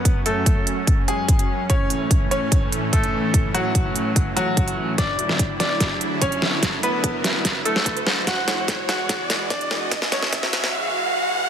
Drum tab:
HH |x-x-x-x-x-x-xx--|x-x-x-x-x-x-xx--|x-x-x-x-x-x-xx--|x-x-x-x-x-x-xx--|
SD |----------------|----------------|----------------|o--o--o-o-----o-|
BD |o---o---o---o---|o---o---o---o---|o---o---o---o---|o---o---o---o---|

HH |x-x-x-x-x-x-xx--|x-x-x-x-x-x-xx--|x-x-x-x---------|
SD |o-----o-o--o--o-|o-o-o-o-o-o-o-o-|oooooooo--------|
BD |o---o---o---o---|o---o---o---o---|o---o-----------|